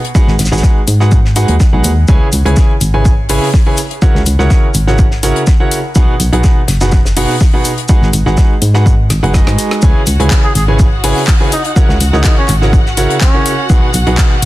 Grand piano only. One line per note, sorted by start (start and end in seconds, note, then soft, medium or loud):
0.15 0.32 G#3 medium
0.15 0.32 D#4 medium
0.15 0.32 F#4 medium
0.15 0.32 G#4 medium
0.15 0.32 B4 medium
0.15 0.32 F#5 medium
0.52 0.79 G#3 medium
0.52 0.79 D#4 medium
0.52 0.79 F#4 medium
0.52 0.79 G#4 medium
0.52 0.79 B4 medium
0.52 0.79 F#5 medium
1.00 1.17 G#3 medium
1.00 1.17 D#4 medium
1.00 1.17 F#4 medium
1.00 1.17 G#4 medium
1.00 1.17 B4 medium
1.00 1.17 F#5 medium
1.36 1.53 G#3 medium
1.36 1.53 D#4 medium
1.36 1.53 F#4 medium
1.36 1.53 G#4 medium
1.36 1.53 B4 medium
1.36 1.53 F#5 medium
1.73 1.89 G#3 medium
1.73 1.89 D#4 medium
1.73 1.89 F#4 medium
1.73 1.89 G#4 medium
1.73 1.89 B4 medium
1.73 1.89 F#5 medium
2.08 2.26 C#3 medium
2.08 2.26 E4 medium
2.08 2.26 G#4 medium
2.08 2.26 B4 medium
2.08 2.26 C#5 medium
2.08 2.26 G#5 medium
2.45 2.72 C#3 medium
2.45 2.72 E4 medium
2.45 2.72 G#4 medium
2.45 2.72 B4 medium
2.45 2.72 C#5 medium
2.45 2.72 G#5 medium
2.94 3.10 C#3 medium
2.94 3.10 E4 medium
2.94 3.10 G#4 medium
2.94 3.10 B4 medium
2.94 3.10 C#5 medium
2.94 3.10 G#5 medium
3.29 3.47 C#3 medium
3.29 3.47 E4 medium
3.29 3.47 G#4 medium
3.29 3.47 B4 medium
3.29 3.47 C#5 medium
3.29 3.47 G#5 medium
3.66 3.77 C#3 medium
3.66 3.77 E4 medium
3.66 3.77 G#4 medium
3.66 3.77 B4 medium
3.66 3.77 C#5 medium
3.66 3.77 G#5 medium
4.02 4.19 C#3 medium
4.02 4.19 E4 medium
4.02 4.19 F#4 medium
4.02 4.19 A#4 medium
4.02 4.19 C#5 medium
4.02 4.19 F#5 medium
4.39 4.66 C#3 medium
4.39 4.66 E4 medium
4.39 4.66 F#4 medium
4.39 4.66 A#4 medium
4.39 4.66 C#5 medium
4.39 4.66 F#5 medium
4.87 5.04 C#3 medium
4.87 5.04 E4 medium
4.87 5.04 F#4 medium
4.87 5.04 A#4 medium
4.87 5.04 C#5 medium
4.87 5.04 F#5 medium
5.23 5.40 C#3 medium
5.23 5.40 E4 medium
5.23 5.40 F#4 medium
5.23 5.40 A#4 medium
5.23 5.40 C#5 medium
5.23 5.40 F#5 medium
5.60 5.76 C#3 medium
5.60 5.76 E4 medium
5.60 5.76 F#4 medium
5.60 5.76 A#4 medium
5.60 5.76 C#5 medium
5.60 5.76 F#5 medium
5.96 6.13 B2 medium
5.96 6.13 D#4 medium
5.96 6.13 F#4 medium
5.96 6.13 G#4 medium
5.96 6.13 B4 medium
5.96 6.13 F#5 medium
6.33 6.59 B2 medium
6.33 6.59 D#4 medium
6.33 6.59 F#4 medium
6.33 6.59 G#4 medium
6.33 6.59 B4 medium
6.33 6.59 F#5 medium
6.81 6.97 B2 medium
6.81 6.97 D#4 medium
6.81 6.97 F#4 medium
6.81 6.97 G#4 medium
6.81 6.97 B4 medium
6.81 6.97 F#5 medium
7.17 7.34 B2 medium
7.17 7.34 D#4 medium
7.17 7.34 F#4 medium
7.17 7.34 G#4 medium
7.17 7.34 B4 medium
7.17 7.34 F#5 medium
7.54 7.70 B2 medium
7.54 7.70 D#4 medium
7.54 7.70 F#4 medium
7.54 7.70 G#4 medium
7.54 7.70 B4 medium
7.54 7.70 F#5 medium
7.89 8.06 G#3 medium
7.89 8.06 D#4 medium
7.89 8.06 F#4 medium
7.89 8.06 G#4 medium
7.89 8.06 B4 medium
7.89 8.06 F#5 medium
8.26 8.53 G#3 medium
8.26 8.53 D#4 medium
8.26 8.53 F#4 medium
8.26 8.53 G#4 medium
8.26 8.53 B4 medium
8.26 8.53 F#5 medium
8.74 8.91 G#3 medium
8.74 8.91 D#4 medium
8.74 8.91 F#4 medium
8.74 8.91 G#4 medium
8.74 8.91 B4 medium
8.74 8.91 F#5 medium
9.23 9.32 G#3 medium
9.23 9.32 D#4 medium
9.23 9.32 F#4 medium
9.23 9.32 G#4 medium
9.23 9.32 B4 medium
9.23 9.32 F#5 medium
9.34 9.80 G#3 medium
9.34 9.80 D#4 medium
9.34 9.80 F#4 medium
9.34 9.80 G#4 medium
9.34 9.80 B4 medium
9.34 9.80 D#5 medium
9.83 10.00 C#3 medium
9.83 10.00 E4 medium
9.83 10.00 G#4 medium
9.83 10.00 B4 medium
9.83 10.00 C#5 medium
9.83 10.00 G#5 medium
10.20 10.46 C#3 medium
10.20 10.46 E4 medium
10.20 10.46 G#4 medium
10.20 10.46 B4 medium
10.20 10.46 C#5 medium
10.20 10.46 G#5 medium
10.68 10.84 C#3 medium
10.68 10.84 E4 medium
10.68 10.84 G#4 medium
10.68 10.84 B4 medium
10.68 10.84 C#5 medium
10.68 10.84 G#5 medium
11.04 11.21 C#3 medium
11.04 11.21 E4 medium
11.04 11.21 G#4 medium
11.04 11.21 B4 medium
11.04 11.21 C#5 medium
11.04 11.21 G#5 loud
11.41 11.51 C#3 medium
11.41 11.51 E4 medium
11.41 11.51 G#4 medium
11.41 11.51 B4 medium
11.41 11.51 C#5 medium
11.41 11.51 G#5 medium
11.76 11.93 C#3 medium
11.76 11.93 E4 medium
11.76 11.93 F#4 medium
11.76 11.93 A#4 medium
11.76 11.93 C#5 medium
11.76 11.93 F#5 medium
12.13 12.40 C#3 medium
12.13 12.40 E4 medium
12.13 12.40 F#4 medium
12.13 12.40 A#4 medium
12.13 12.40 C#5 medium
12.13 12.40 F#5 medium
12.62 12.78 C#3 medium
12.62 12.78 E4 medium
12.62 12.78 F#4 medium
12.62 12.78 A#4 medium
12.62 12.78 C#5 medium
12.62 12.78 F#5 medium
12.97 13.14 C#3 medium
12.97 13.14 E4 medium
12.97 13.14 F#4 medium
12.97 13.14 A#4 medium
12.97 13.14 C#5 medium
12.97 13.14 F#5 medium
13.34 13.51 C#3 medium
13.34 13.51 E4 medium
13.34 13.51 F#4 medium
13.34 13.51 A#4 medium
13.34 13.51 C#5 medium
13.34 13.51 F#5 medium
13.70 13.87 B2 medium
13.70 13.87 D#4 medium
13.70 13.87 F#4 medium
13.70 13.87 G#4 medium
13.70 13.87 B4 medium
13.70 13.87 F#5 medium
14.07 14.33 B2 medium
14.07 14.33 D#4 medium
14.07 14.33 F#4 medium
14.07 14.33 G#4 medium
14.07 14.33 B4 medium
14.07 14.33 F#5 medium